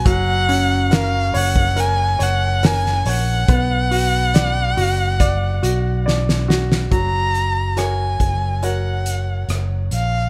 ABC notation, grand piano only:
X:1
M:4/4
L:1/8
Q:1/4=70
K:F#
V:1 name="Grand piano"
F, C A c A c A c | B, F =d F d F d F | F,2 [FAc]2 [FAc]2 z2 |]